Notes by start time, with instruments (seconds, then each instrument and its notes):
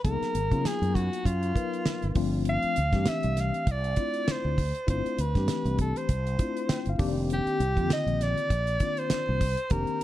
0.04 fretless electric bass C#2, tine electric piano F#3 A#3 B3 D#4 G#4, soprano saxophone A#4, kick, closed hi-hat
0.22 muted fretless electric bass stroke, snare, closed hi-hat
0.35 fretless electric bass G#1, closed hi-hat
0.51 fretless electric bass C#3, tine electric piano F#3 A#3 B3 D#4 F4, kick, closed hi-hat
0.65 soprano saxophone G#4, muted fretless electric bass stroke, snare, closed hi-hat
0.82 fretless electric bass F#2, closed hi-hat
0.95 soprano saxophone F#4, kick, closed hi-hat
1.13 closed hi-hat
1.25 fretless electric bass F#2, soprano saxophone F4, kick, closed hi-hat
1.43 closed hi-hat
1.55 tine electric piano F#3 B3 D#4 A#4 B4, kick, closed hi-hat
1.73 closed hi-hat
1.86 muted fretless electric bass stroke, snare, closed hi-hat
2.02 fretless electric bass G#1, closed hi-hat
2.15 fretless electric bass G1, tine electric piano F3 A3 C4 D4 F4, kick, open hi-hat
2.45 soprano saxophone F5, closed hi-hat
2.63 muted fretless electric bass stroke, closed hi-hat
2.76 fretless electric bass D2, closed hi-hat
2.92 fretless electric bass G2, tine electric piano E3 A3 C4 D4 G4, kick, snare, closed hi-hat
3.06 soprano saxophone E5, muted fretless electric bass stroke, snare, closed hi-hat
3.23 fretless electric bass C2, closed hi-hat
3.37 soprano saxophone F5, snare, closed hi-hat
3.54 closed hi-hat
3.67 fretless electric bass C2, kick, closed hi-hat
3.71 soprano saxophone D5
3.84 closed hi-hat
3.96 tine electric piano A3 C4 D4 E4 F4, kick, closed hi-hat
4.14 closed hi-hat
4.28 soprano saxophone C5, muted fretless electric bass stroke, snare, closed hi-hat
4.45 fretless electric bass D2
4.58 kick, open hi-hat
4.75 closed hi-hat
4.87 fretless electric bass G1, tine electric piano A3 C4 D4 E4 F4, soprano saxophone C5, kick, closed hi-hat
5.06 closed hi-hat
5.18 fretless electric bass D2, soprano saxophone B4, closed hi-hat
5.35 fretless electric bass G2, tine electric piano E3 A3 C4 D4 G4, kick, snare, closed hi-hat
5.48 muted fretless electric bass stroke, snare, closed hi-hat
5.65 fretless electric bass C2, closed hi-hat
5.78 soprano saxophone A4, kick, closed hi-hat
5.96 soprano saxophone C5, closed hi-hat
6.09 fretless electric bass C2, kick, closed hi-hat
6.27 closed hi-hat
6.38 tine electric piano A3 C4 D4 E4 F4, kick, closed hi-hat
6.57 closed hi-hat
6.69 tine electric piano G5, muted fretless electric bass stroke, snare, closed hi-hat
6.86 fretless electric bass G1, tine electric piano F5, closed hi-hat
6.98 fretless electric bass F1, tine electric piano D#3 A#3 C4 D4 G4, kick, open hi-hat
7.09 tine electric piano D5
7.30 soprano saxophone G4, closed hi-hat
7.46 muted fretless electric bass stroke, closed hi-hat
7.60 fretless electric bass C2, closed hi-hat
7.76 fretless electric bass F2, tine electric piano D3 D#3 A#3 C4 F4, kick, closed hi-hat
7.90 soprano saxophone D#5, muted fretless electric bass stroke, snare, closed hi-hat
8.06 fretless electric bass A#1, closed hi-hat
8.21 soprano saxophone D5, snare, closed hi-hat
8.38 closed hi-hat
8.50 fretless electric bass A#1, kick, closed hi-hat
8.67 closed hi-hat
8.80 tine electric piano D#3 A#3 C4 D4 F4, kick, closed hi-hat
8.97 soprano saxophone C5, closed hi-hat
9.10 muted fretless electric bass stroke, snare, closed hi-hat
9.29 fretless electric bass C2
9.41 kick, open hi-hat
9.57 closed hi-hat
9.70 fretless electric bass F1, tine electric piano D#3 A#3 C4 D4 G4, soprano saxophone A#4, kick, closed hi-hat
9.87 closed hi-hat